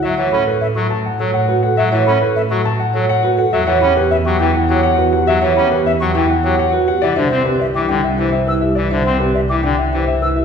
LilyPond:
<<
  \new Staff \with { instrumentName = "Flute" } { \time 3/4 \key e \dorian \tempo 4 = 103 e''16 r16 b''16 r16 e''16 cis'''16 r4. | e''16 r16 b''16 r16 e''16 cis'''16 r4. | e''16 r16 b''16 r16 e''16 cis'''16 r4. | e''16 r16 b''16 r16 e''16 cis'''16 r4. |
e''16 r16 c'''16 r16 e''16 d'''16 r4 e'''16 r16 | e''16 r16 c'''16 r16 e''16 d'''16 r4 e'''16 r16 | }
  \new Staff \with { instrumentName = "Grand piano" } { \time 3/4 \key e \dorian e''16 fis''16 a'16 b'16 r16 a'16 a''16 fis''16 a'16 fis''16 b'16 fis''16 | e''16 fis''16 a'16 b'16 r16 a'16 a''16 fis''16 a'16 fis''16 b'16 fis''16 | e''16 fis''16 g'16 b'16 e''16 g'16 g''16 fis''16 g'16 fis''16 b'16 fis''16 | e''16 fis''16 g'16 b'16 e''16 g'16 g''16 fis''16 g'16 fis''16 b'16 fis''16 |
d''16 e''16 g'16 b'16 d''16 g'16 g''16 e''16 g'16 e''16 b'16 e''16 | d''16 e''16 g'16 b'16 d''16 g'16 g''16 e''16 g'16 e''16 b'16 e''16 | }
  \new Staff \with { instrumentName = "Vibraphone" } { \time 3/4 \key e \dorian r16 cis''16 r16 a'16 r4 cis''16 r16 fis'16 a'16 | r16 cis''16 r16 a'16 r4 cis''16 r16 fis'16 a'16 | r16 cis''16 r16 g'16 r8 e'16 r16 cis''16 r16 fis'16 g'16 | r16 cis''16 r16 g'16 r8 e'16 r16 cis''16 r16 fis'16 g'16 |
r16 c''16 r16 g'16 r8 d'16 r16 c''16 r16 e'16 g'16 | r16 c''16 r16 g'16 r8 d'16 r16 c''16 r16 e'16 g'16 | }
  \new Staff \with { instrumentName = "Pipe organ" } { \clef bass \time 3/4 \key e \dorian fis16 e16 cis'16 r8 fis16 r8 fis16 r8. | fis16 e16 cis'16 r8 fis16 r8 fis16 r8. | fis16 e16 cis'16 r8 fis16 e16 r16 fis16 r8. | fis16 e16 cis'16 r8 fis16 e16 r16 fis16 r8. |
e16 d16 c'16 r8 e16 d16 r16 e16 r8. | e16 d16 c'16 r8 e16 d16 r16 e16 r8. | }
  \new Staff \with { instrumentName = "Double bass section" } { \clef bass \time 3/4 \key e \dorian a,2.~ | a,2. | e,2.~ | e,2. |
c,2.~ | c,2. | }
>>